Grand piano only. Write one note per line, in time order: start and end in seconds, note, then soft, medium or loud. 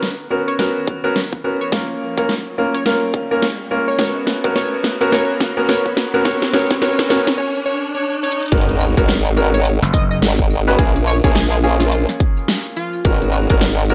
0.30 0.56 B3 medium
0.30 0.56 C#4 medium
0.30 0.56 F#4 medium
0.30 0.56 A#4 medium
0.59 1.00 B3 medium
0.59 1.00 C#4 medium
0.59 1.00 F#4 medium
0.59 1.00 A#4 medium
1.04 1.17 B3 medium
1.04 1.17 C#4 medium
1.04 1.17 F#4 medium
1.04 1.17 A#4 loud
1.44 1.69 B3 medium
1.44 1.69 C#4 medium
1.44 1.69 F#4 medium
1.44 1.69 A#4 medium
1.73 2.14 A#3 medium
1.73 2.14 C#4 medium
1.73 2.14 F4 medium
1.73 2.14 A#4 medium
2.18 2.30 A#3 medium
2.18 2.31 C#4 medium
2.18 2.31 F4 medium
2.18 2.30 A#4 loud
2.58 2.83 A#3 medium
2.58 2.83 C#4 medium
2.58 2.83 F4 medium
2.58 2.83 A#4 medium
2.86 3.27 A#3 medium
2.86 3.27 C#4 medium
2.86 3.27 F4 medium
2.86 3.27 A#4 medium
3.31 3.44 A#3 medium
3.31 3.44 C#4 medium
3.31 3.44 F4 medium
3.31 3.44 A#4 loud
3.71 3.96 A#3 medium
3.71 3.96 C#4 medium
3.71 3.96 F4 medium
3.71 3.96 A#4 medium
3.99 4.41 B3 medium
3.99 4.41 C#4 medium
3.99 4.41 F#4 medium
3.99 4.41 A#4 medium
4.44 4.54 B3 medium
4.44 4.54 C#4 medium
4.44 4.54 F#4 medium
4.44 4.54 A#4 loud
4.56 4.97 B3 medium
4.56 4.97 C#4 medium
4.56 4.97 F#4 medium
4.56 4.97 A#4 medium
5.01 5.10 B3 loud
5.01 5.11 C#4 medium
5.01 5.10 F#4 medium
5.01 5.11 A#4 loud
5.12 5.54 B3 medium
5.12 5.54 C#4 medium
5.12 5.54 F#4 medium
5.12 5.54 A#4 medium
5.57 5.67 B3 medium
5.57 5.67 C#4 medium
5.57 5.67 F#4 medium
5.57 5.67 A#4 loud
5.69 6.10 B3 medium
5.69 6.10 C#4 medium
5.69 6.10 F#4 medium
5.69 6.10 A#4 medium
6.14 6.24 B3 medium
6.14 6.24 C#4 medium
6.14 6.24 F#4 medium
6.14 6.24 A#4 loud
6.25 6.52 B3 medium
6.25 6.52 C#4 medium
6.25 6.52 F#4 medium
6.53 6.80 B3 medium
6.53 6.80 C#4 medium
6.53 6.80 F#4 medium
6.53 6.80 A#4 medium
6.82 7.08 B3 medium
6.82 7.08 C#4 medium
6.82 7.09 F#4 medium
6.82 7.09 A#4 medium
7.10 7.37 B3 medium
7.10 7.37 C#4 medium
7.10 7.37 F#4 medium
7.10 7.37 A#4 medium
8.52 8.93 B3 medium
8.52 8.93 C#4 medium
8.52 8.93 F#4 medium
8.52 8.93 A#4 medium
8.97 9.10 B3 medium
8.97 9.10 C#4 medium
8.97 9.10 F#4 medium
8.97 9.10 A#4 loud
9.37 9.62 B3 medium
9.37 9.62 C#4 medium
9.37 9.62 F#4 medium
9.37 9.62 A#4 medium
10.67 10.77 B3 loud
10.67 10.77 C#4 medium
10.67 10.77 F#4 medium
10.67 10.77 B4 loud
10.79 10.96 A#3 loud
10.79 10.96 C#4 medium
10.79 10.96 F4 medium
10.79 10.96 G#4 loud
11.24 11.36 A#3 loud
11.24 11.36 C#4 medium
11.24 11.36 F4 medium
11.24 11.36 G#4 loud
11.63 13.02 A#3 medium
11.63 13.02 C#4 medium
11.63 13.02 F4 medium
11.63 13.02 G#4 medium
13.05 13.46 B3 medium
13.05 13.46 C#4 medium
13.05 13.46 F#4 medium
13.05 13.46 A#4 medium
13.50 13.63 B3 medium
13.50 13.63 C#4 medium
13.50 13.63 F#4 medium
13.50 13.63 A#4 loud
13.90 13.94 B3 medium
13.90 13.94 C#4 medium
13.90 13.94 F#4 medium
13.90 13.94 A#4 medium